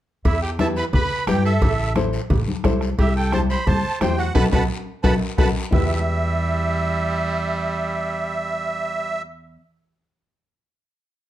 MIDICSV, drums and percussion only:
0, 0, Header, 1, 3, 480
1, 0, Start_track
1, 0, Key_signature, 1, "minor"
1, 0, Tempo, 342075
1, 349, Time_signature, 4, 2, 24, 8
1, 15845, End_track
2, 0, Start_track
2, 0, Title_t, "Two-headed folk drums"
2, 352, Note_on_c, 9, 36, 89
2, 493, Note_off_c, 9, 36, 0
2, 829, Note_on_c, 9, 37, 75
2, 970, Note_off_c, 9, 37, 0
2, 1311, Note_on_c, 9, 36, 77
2, 1452, Note_off_c, 9, 36, 0
2, 1786, Note_on_c, 9, 37, 91
2, 1927, Note_off_c, 9, 37, 0
2, 2268, Note_on_c, 9, 36, 90
2, 2408, Note_off_c, 9, 36, 0
2, 2745, Note_on_c, 9, 37, 81
2, 2885, Note_off_c, 9, 37, 0
2, 3228, Note_on_c, 9, 36, 76
2, 3369, Note_off_c, 9, 36, 0
2, 3704, Note_on_c, 9, 37, 85
2, 3709, Note_on_c, 9, 36, 78
2, 3845, Note_off_c, 9, 37, 0
2, 3849, Note_off_c, 9, 36, 0
2, 3942, Note_on_c, 9, 37, 70
2, 4082, Note_off_c, 9, 37, 0
2, 4189, Note_on_c, 9, 36, 85
2, 4329, Note_off_c, 9, 36, 0
2, 4664, Note_on_c, 9, 37, 85
2, 4805, Note_off_c, 9, 37, 0
2, 5148, Note_on_c, 9, 36, 69
2, 5288, Note_off_c, 9, 36, 0
2, 5627, Note_on_c, 9, 37, 92
2, 5767, Note_off_c, 9, 37, 0
2, 6111, Note_on_c, 9, 36, 95
2, 6251, Note_off_c, 9, 36, 0
2, 6350, Note_on_c, 9, 36, 89
2, 6491, Note_off_c, 9, 36, 0
2, 7071, Note_on_c, 9, 36, 93
2, 7211, Note_off_c, 9, 36, 0
2, 7551, Note_on_c, 9, 36, 111
2, 7692, Note_off_c, 9, 36, 0
2, 8032, Note_on_c, 9, 36, 110
2, 8173, Note_off_c, 9, 36, 0
2, 15845, End_track
3, 0, Start_track
3, 0, Title_t, "Drums"
3, 351, Note_on_c, 9, 74, 73
3, 354, Note_on_c, 9, 56, 116
3, 491, Note_off_c, 9, 74, 0
3, 495, Note_off_c, 9, 56, 0
3, 829, Note_on_c, 9, 63, 82
3, 830, Note_on_c, 9, 73, 65
3, 832, Note_on_c, 9, 56, 66
3, 969, Note_off_c, 9, 63, 0
3, 970, Note_off_c, 9, 73, 0
3, 972, Note_off_c, 9, 56, 0
3, 1070, Note_on_c, 9, 73, 64
3, 1210, Note_off_c, 9, 73, 0
3, 1308, Note_on_c, 9, 64, 84
3, 1310, Note_on_c, 9, 56, 92
3, 1312, Note_on_c, 9, 74, 61
3, 1448, Note_off_c, 9, 64, 0
3, 1450, Note_off_c, 9, 56, 0
3, 1452, Note_off_c, 9, 74, 0
3, 1784, Note_on_c, 9, 63, 74
3, 1789, Note_on_c, 9, 56, 73
3, 1789, Note_on_c, 9, 73, 78
3, 1924, Note_off_c, 9, 63, 0
3, 1929, Note_off_c, 9, 73, 0
3, 1930, Note_off_c, 9, 56, 0
3, 2028, Note_on_c, 9, 73, 62
3, 2168, Note_off_c, 9, 73, 0
3, 2267, Note_on_c, 9, 64, 70
3, 2271, Note_on_c, 9, 74, 65
3, 2273, Note_on_c, 9, 56, 110
3, 2407, Note_off_c, 9, 64, 0
3, 2411, Note_off_c, 9, 74, 0
3, 2413, Note_off_c, 9, 56, 0
3, 2743, Note_on_c, 9, 63, 84
3, 2749, Note_on_c, 9, 56, 65
3, 2750, Note_on_c, 9, 73, 66
3, 2883, Note_off_c, 9, 63, 0
3, 2889, Note_off_c, 9, 56, 0
3, 2891, Note_off_c, 9, 73, 0
3, 2988, Note_on_c, 9, 73, 68
3, 3128, Note_off_c, 9, 73, 0
3, 3229, Note_on_c, 9, 56, 89
3, 3229, Note_on_c, 9, 74, 66
3, 3230, Note_on_c, 9, 64, 87
3, 3369, Note_off_c, 9, 56, 0
3, 3369, Note_off_c, 9, 74, 0
3, 3370, Note_off_c, 9, 64, 0
3, 3478, Note_on_c, 9, 63, 71
3, 3619, Note_off_c, 9, 63, 0
3, 3712, Note_on_c, 9, 56, 67
3, 3712, Note_on_c, 9, 66, 70
3, 3714, Note_on_c, 9, 63, 81
3, 3714, Note_on_c, 9, 73, 70
3, 3852, Note_off_c, 9, 56, 0
3, 3852, Note_off_c, 9, 66, 0
3, 3854, Note_off_c, 9, 63, 0
3, 3854, Note_off_c, 9, 73, 0
3, 3954, Note_on_c, 9, 73, 68
3, 4095, Note_off_c, 9, 73, 0
3, 4190, Note_on_c, 9, 56, 110
3, 4194, Note_on_c, 9, 74, 69
3, 4331, Note_off_c, 9, 56, 0
3, 4334, Note_off_c, 9, 74, 0
3, 4671, Note_on_c, 9, 73, 64
3, 4672, Note_on_c, 9, 56, 69
3, 4677, Note_on_c, 9, 63, 83
3, 4812, Note_off_c, 9, 56, 0
3, 4812, Note_off_c, 9, 73, 0
3, 4817, Note_off_c, 9, 63, 0
3, 4911, Note_on_c, 9, 73, 65
3, 5051, Note_off_c, 9, 73, 0
3, 5147, Note_on_c, 9, 56, 89
3, 5153, Note_on_c, 9, 64, 82
3, 5159, Note_on_c, 9, 74, 60
3, 5287, Note_off_c, 9, 56, 0
3, 5293, Note_off_c, 9, 64, 0
3, 5300, Note_off_c, 9, 74, 0
3, 5632, Note_on_c, 9, 56, 73
3, 5632, Note_on_c, 9, 66, 73
3, 5633, Note_on_c, 9, 63, 73
3, 5635, Note_on_c, 9, 73, 82
3, 5772, Note_off_c, 9, 56, 0
3, 5772, Note_off_c, 9, 66, 0
3, 5773, Note_off_c, 9, 63, 0
3, 5775, Note_off_c, 9, 73, 0
3, 5868, Note_on_c, 9, 73, 68
3, 6008, Note_off_c, 9, 73, 0
3, 6103, Note_on_c, 9, 65, 105
3, 6105, Note_on_c, 9, 74, 98
3, 6111, Note_on_c, 9, 63, 101
3, 6244, Note_off_c, 9, 65, 0
3, 6245, Note_off_c, 9, 74, 0
3, 6251, Note_off_c, 9, 63, 0
3, 6347, Note_on_c, 9, 65, 99
3, 6349, Note_on_c, 9, 74, 89
3, 6355, Note_on_c, 9, 63, 106
3, 6488, Note_off_c, 9, 65, 0
3, 6489, Note_off_c, 9, 74, 0
3, 6495, Note_off_c, 9, 63, 0
3, 7068, Note_on_c, 9, 65, 107
3, 7072, Note_on_c, 9, 63, 94
3, 7075, Note_on_c, 9, 74, 94
3, 7209, Note_off_c, 9, 65, 0
3, 7212, Note_off_c, 9, 63, 0
3, 7216, Note_off_c, 9, 74, 0
3, 7552, Note_on_c, 9, 65, 100
3, 7553, Note_on_c, 9, 63, 98
3, 7557, Note_on_c, 9, 74, 106
3, 7692, Note_off_c, 9, 65, 0
3, 7694, Note_off_c, 9, 63, 0
3, 7698, Note_off_c, 9, 74, 0
3, 8032, Note_on_c, 9, 64, 86
3, 8034, Note_on_c, 9, 74, 104
3, 8035, Note_on_c, 9, 66, 108
3, 8172, Note_off_c, 9, 64, 0
3, 8175, Note_off_c, 9, 66, 0
3, 8175, Note_off_c, 9, 74, 0
3, 15845, End_track
0, 0, End_of_file